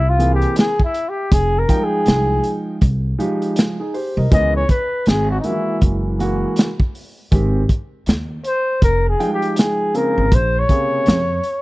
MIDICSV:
0, 0, Header, 1, 5, 480
1, 0, Start_track
1, 0, Tempo, 750000
1, 845, Time_signature, 4, 2, 24, 8
1, 7436, End_track
2, 0, Start_track
2, 0, Title_t, "Flugelhorn"
2, 0, Program_c, 0, 56
2, 0, Note_on_c, 0, 64, 84
2, 57, Note_on_c, 0, 65, 82
2, 67, Note_off_c, 0, 64, 0
2, 211, Note_off_c, 0, 65, 0
2, 217, Note_on_c, 0, 67, 84
2, 360, Note_off_c, 0, 67, 0
2, 375, Note_on_c, 0, 68, 85
2, 519, Note_off_c, 0, 68, 0
2, 537, Note_on_c, 0, 64, 78
2, 696, Note_on_c, 0, 67, 85
2, 706, Note_off_c, 0, 64, 0
2, 853, Note_on_c, 0, 68, 101
2, 862, Note_off_c, 0, 67, 0
2, 1016, Note_on_c, 0, 70, 87
2, 1025, Note_off_c, 0, 68, 0
2, 1176, Note_on_c, 0, 68, 88
2, 1185, Note_off_c, 0, 70, 0
2, 1650, Note_off_c, 0, 68, 0
2, 2775, Note_on_c, 0, 75, 110
2, 2907, Note_off_c, 0, 75, 0
2, 2918, Note_on_c, 0, 73, 109
2, 3002, Note_off_c, 0, 73, 0
2, 3009, Note_on_c, 0, 71, 88
2, 3250, Note_on_c, 0, 68, 88
2, 3260, Note_off_c, 0, 71, 0
2, 3391, Note_off_c, 0, 68, 0
2, 3395, Note_on_c, 0, 66, 82
2, 3448, Note_off_c, 0, 66, 0
2, 3457, Note_on_c, 0, 63, 54
2, 3490, Note_on_c, 0, 64, 78
2, 3500, Note_off_c, 0, 63, 0
2, 3728, Note_off_c, 0, 64, 0
2, 5414, Note_on_c, 0, 72, 92
2, 5633, Note_off_c, 0, 72, 0
2, 5655, Note_on_c, 0, 70, 96
2, 5799, Note_off_c, 0, 70, 0
2, 5814, Note_on_c, 0, 68, 83
2, 5959, Note_off_c, 0, 68, 0
2, 5973, Note_on_c, 0, 67, 88
2, 6136, Note_on_c, 0, 68, 80
2, 6146, Note_off_c, 0, 67, 0
2, 6376, Note_on_c, 0, 70, 95
2, 6386, Note_off_c, 0, 68, 0
2, 6620, Note_on_c, 0, 72, 115
2, 6630, Note_off_c, 0, 70, 0
2, 6778, Note_on_c, 0, 73, 104
2, 6787, Note_off_c, 0, 72, 0
2, 7436, Note_off_c, 0, 73, 0
2, 7436, End_track
3, 0, Start_track
3, 0, Title_t, "Grand piano"
3, 0, Program_c, 1, 0
3, 118, Note_on_c, 1, 52, 66
3, 120, Note_on_c, 1, 58, 62
3, 123, Note_on_c, 1, 60, 54
3, 126, Note_on_c, 1, 68, 69
3, 420, Note_off_c, 1, 52, 0
3, 421, Note_off_c, 1, 58, 0
3, 423, Note_off_c, 1, 60, 0
3, 424, Note_off_c, 1, 68, 0
3, 1077, Note_on_c, 1, 53, 77
3, 1081, Note_on_c, 1, 55, 51
3, 1081, Note_on_c, 1, 63, 71
3, 1086, Note_on_c, 1, 79, 86
3, 1122, Note_on_c, 1, 56, 70
3, 1134, Note_off_c, 1, 55, 0
3, 1764, Note_off_c, 1, 53, 0
3, 1766, Note_off_c, 1, 63, 0
3, 1768, Note_off_c, 1, 79, 0
3, 1786, Note_off_c, 1, 56, 0
3, 2038, Note_on_c, 1, 53, 81
3, 2039, Note_on_c, 1, 56, 75
3, 2041, Note_on_c, 1, 63, 73
3, 2046, Note_on_c, 1, 67, 85
3, 2283, Note_off_c, 1, 63, 0
3, 2285, Note_off_c, 1, 67, 0
3, 2399, Note_off_c, 1, 53, 0
3, 2399, Note_off_c, 1, 56, 0
3, 2429, Note_on_c, 1, 68, 70
3, 2432, Note_on_c, 1, 63, 59
3, 2519, Note_off_c, 1, 68, 0
3, 2521, Note_off_c, 1, 63, 0
3, 2522, Note_on_c, 1, 72, 62
3, 2527, Note_on_c, 1, 67, 56
3, 2663, Note_off_c, 1, 72, 0
3, 2666, Note_off_c, 1, 67, 0
3, 2673, Note_on_c, 1, 75, 62
3, 2676, Note_on_c, 1, 70, 51
3, 2758, Note_on_c, 1, 52, 69
3, 2760, Note_on_c, 1, 59, 68
3, 2764, Note_on_c, 1, 61, 62
3, 2766, Note_on_c, 1, 68, 70
3, 2900, Note_off_c, 1, 75, 0
3, 2902, Note_off_c, 1, 70, 0
3, 2946, Note_off_c, 1, 52, 0
3, 2947, Note_off_c, 1, 59, 0
3, 2949, Note_off_c, 1, 61, 0
3, 2950, Note_off_c, 1, 68, 0
3, 3479, Note_on_c, 1, 51, 54
3, 3483, Note_on_c, 1, 56, 62
3, 3484, Note_on_c, 1, 58, 63
3, 3486, Note_on_c, 1, 66, 69
3, 3520, Note_on_c, 1, 52, 59
3, 3533, Note_off_c, 1, 51, 0
3, 3953, Note_off_c, 1, 52, 0
3, 3955, Note_off_c, 1, 56, 0
3, 3958, Note_off_c, 1, 58, 0
3, 3961, Note_off_c, 1, 66, 0
3, 3963, Note_on_c, 1, 52, 71
3, 3964, Note_on_c, 1, 56, 64
3, 3968, Note_on_c, 1, 58, 66
3, 3971, Note_on_c, 1, 66, 83
3, 4263, Note_off_c, 1, 52, 0
3, 4263, Note_off_c, 1, 56, 0
3, 4265, Note_off_c, 1, 58, 0
3, 4267, Note_off_c, 1, 66, 0
3, 4680, Note_on_c, 1, 51, 74
3, 4684, Note_on_c, 1, 56, 69
3, 4686, Note_on_c, 1, 60, 64
3, 4688, Note_on_c, 1, 67, 81
3, 4867, Note_off_c, 1, 51, 0
3, 4869, Note_off_c, 1, 56, 0
3, 4870, Note_off_c, 1, 60, 0
3, 4871, Note_off_c, 1, 67, 0
3, 5883, Note_on_c, 1, 53, 66
3, 5885, Note_on_c, 1, 55, 50
3, 5887, Note_on_c, 1, 63, 64
3, 5889, Note_on_c, 1, 79, 78
3, 5926, Note_on_c, 1, 56, 67
3, 5936, Note_off_c, 1, 55, 0
3, 6363, Note_on_c, 1, 49, 67
3, 6364, Note_on_c, 1, 58, 63
3, 6368, Note_on_c, 1, 60, 67
3, 6370, Note_on_c, 1, 68, 70
3, 6548, Note_off_c, 1, 49, 0
3, 6549, Note_off_c, 1, 58, 0
3, 6551, Note_off_c, 1, 60, 0
3, 6552, Note_off_c, 1, 68, 0
3, 6567, Note_off_c, 1, 53, 0
3, 6569, Note_off_c, 1, 63, 0
3, 6569, Note_off_c, 1, 79, 0
3, 6588, Note_off_c, 1, 56, 0
3, 6842, Note_on_c, 1, 49, 71
3, 6845, Note_on_c, 1, 58, 51
3, 6847, Note_on_c, 1, 48, 62
3, 6849, Note_on_c, 1, 68, 72
3, 7142, Note_off_c, 1, 49, 0
3, 7144, Note_off_c, 1, 58, 0
3, 7145, Note_off_c, 1, 48, 0
3, 7146, Note_off_c, 1, 68, 0
3, 7436, End_track
4, 0, Start_track
4, 0, Title_t, "Upright bass"
4, 0, Program_c, 2, 32
4, 0, Note_on_c, 2, 36, 98
4, 279, Note_off_c, 2, 36, 0
4, 842, Note_on_c, 2, 29, 100
4, 1041, Note_off_c, 2, 29, 0
4, 1324, Note_on_c, 2, 36, 93
4, 1522, Note_off_c, 2, 36, 0
4, 1804, Note_on_c, 2, 36, 92
4, 2002, Note_off_c, 2, 36, 0
4, 2669, Note_on_c, 2, 36, 95
4, 2747, Note_off_c, 2, 36, 0
4, 2762, Note_on_c, 2, 37, 101
4, 2961, Note_off_c, 2, 37, 0
4, 3245, Note_on_c, 2, 32, 100
4, 3442, Note_off_c, 2, 32, 0
4, 3724, Note_on_c, 2, 30, 89
4, 4119, Note_off_c, 2, 30, 0
4, 4685, Note_on_c, 2, 32, 101
4, 4882, Note_off_c, 2, 32, 0
4, 5166, Note_on_c, 2, 39, 77
4, 5363, Note_off_c, 2, 39, 0
4, 5644, Note_on_c, 2, 29, 99
4, 5842, Note_off_c, 2, 29, 0
4, 6513, Note_on_c, 2, 32, 89
4, 6589, Note_off_c, 2, 32, 0
4, 6603, Note_on_c, 2, 34, 113
4, 6801, Note_off_c, 2, 34, 0
4, 7085, Note_on_c, 2, 41, 95
4, 7283, Note_off_c, 2, 41, 0
4, 7436, End_track
5, 0, Start_track
5, 0, Title_t, "Drums"
5, 127, Note_on_c, 9, 42, 66
5, 191, Note_off_c, 9, 42, 0
5, 266, Note_on_c, 9, 42, 46
5, 330, Note_off_c, 9, 42, 0
5, 358, Note_on_c, 9, 42, 90
5, 377, Note_on_c, 9, 38, 117
5, 422, Note_off_c, 9, 42, 0
5, 441, Note_off_c, 9, 38, 0
5, 509, Note_on_c, 9, 36, 81
5, 573, Note_off_c, 9, 36, 0
5, 604, Note_on_c, 9, 42, 71
5, 668, Note_off_c, 9, 42, 0
5, 843, Note_on_c, 9, 36, 114
5, 843, Note_on_c, 9, 42, 103
5, 907, Note_off_c, 9, 36, 0
5, 907, Note_off_c, 9, 42, 0
5, 1082, Note_on_c, 9, 36, 92
5, 1083, Note_on_c, 9, 42, 69
5, 1146, Note_off_c, 9, 36, 0
5, 1147, Note_off_c, 9, 42, 0
5, 1317, Note_on_c, 9, 42, 87
5, 1333, Note_on_c, 9, 38, 108
5, 1381, Note_off_c, 9, 42, 0
5, 1397, Note_off_c, 9, 38, 0
5, 1559, Note_on_c, 9, 42, 65
5, 1623, Note_off_c, 9, 42, 0
5, 1800, Note_on_c, 9, 42, 76
5, 1803, Note_on_c, 9, 36, 89
5, 1864, Note_off_c, 9, 42, 0
5, 1867, Note_off_c, 9, 36, 0
5, 2047, Note_on_c, 9, 42, 62
5, 2111, Note_off_c, 9, 42, 0
5, 2188, Note_on_c, 9, 42, 47
5, 2252, Note_off_c, 9, 42, 0
5, 2278, Note_on_c, 9, 42, 94
5, 2297, Note_on_c, 9, 38, 105
5, 2342, Note_off_c, 9, 42, 0
5, 2361, Note_off_c, 9, 38, 0
5, 2524, Note_on_c, 9, 46, 51
5, 2588, Note_off_c, 9, 46, 0
5, 2763, Note_on_c, 9, 36, 114
5, 2763, Note_on_c, 9, 42, 102
5, 2827, Note_off_c, 9, 36, 0
5, 2827, Note_off_c, 9, 42, 0
5, 3002, Note_on_c, 9, 36, 88
5, 3004, Note_on_c, 9, 42, 70
5, 3066, Note_off_c, 9, 36, 0
5, 3068, Note_off_c, 9, 42, 0
5, 3237, Note_on_c, 9, 42, 80
5, 3253, Note_on_c, 9, 38, 107
5, 3301, Note_off_c, 9, 42, 0
5, 3317, Note_off_c, 9, 38, 0
5, 3479, Note_on_c, 9, 42, 66
5, 3543, Note_off_c, 9, 42, 0
5, 3721, Note_on_c, 9, 42, 70
5, 3724, Note_on_c, 9, 36, 84
5, 3785, Note_off_c, 9, 42, 0
5, 3788, Note_off_c, 9, 36, 0
5, 3969, Note_on_c, 9, 42, 67
5, 4033, Note_off_c, 9, 42, 0
5, 4199, Note_on_c, 9, 42, 88
5, 4218, Note_on_c, 9, 38, 110
5, 4263, Note_off_c, 9, 42, 0
5, 4282, Note_off_c, 9, 38, 0
5, 4350, Note_on_c, 9, 36, 90
5, 4414, Note_off_c, 9, 36, 0
5, 4447, Note_on_c, 9, 46, 54
5, 4511, Note_off_c, 9, 46, 0
5, 4684, Note_on_c, 9, 36, 107
5, 4685, Note_on_c, 9, 42, 94
5, 4748, Note_off_c, 9, 36, 0
5, 4749, Note_off_c, 9, 42, 0
5, 4923, Note_on_c, 9, 36, 74
5, 4926, Note_on_c, 9, 42, 74
5, 4987, Note_off_c, 9, 36, 0
5, 4990, Note_off_c, 9, 42, 0
5, 5160, Note_on_c, 9, 42, 77
5, 5176, Note_on_c, 9, 38, 106
5, 5224, Note_off_c, 9, 42, 0
5, 5240, Note_off_c, 9, 38, 0
5, 5404, Note_on_c, 9, 42, 71
5, 5468, Note_off_c, 9, 42, 0
5, 5644, Note_on_c, 9, 42, 81
5, 5645, Note_on_c, 9, 36, 90
5, 5708, Note_off_c, 9, 42, 0
5, 5709, Note_off_c, 9, 36, 0
5, 5890, Note_on_c, 9, 42, 70
5, 5954, Note_off_c, 9, 42, 0
5, 6030, Note_on_c, 9, 42, 47
5, 6094, Note_off_c, 9, 42, 0
5, 6120, Note_on_c, 9, 42, 95
5, 6139, Note_on_c, 9, 38, 106
5, 6184, Note_off_c, 9, 42, 0
5, 6203, Note_off_c, 9, 38, 0
5, 6366, Note_on_c, 9, 42, 69
5, 6430, Note_off_c, 9, 42, 0
5, 6603, Note_on_c, 9, 36, 114
5, 6603, Note_on_c, 9, 42, 93
5, 6667, Note_off_c, 9, 36, 0
5, 6667, Note_off_c, 9, 42, 0
5, 6842, Note_on_c, 9, 36, 81
5, 6845, Note_on_c, 9, 42, 76
5, 6906, Note_off_c, 9, 36, 0
5, 6909, Note_off_c, 9, 42, 0
5, 7077, Note_on_c, 9, 42, 76
5, 7093, Note_on_c, 9, 38, 112
5, 7141, Note_off_c, 9, 42, 0
5, 7157, Note_off_c, 9, 38, 0
5, 7319, Note_on_c, 9, 42, 68
5, 7383, Note_off_c, 9, 42, 0
5, 7436, End_track
0, 0, End_of_file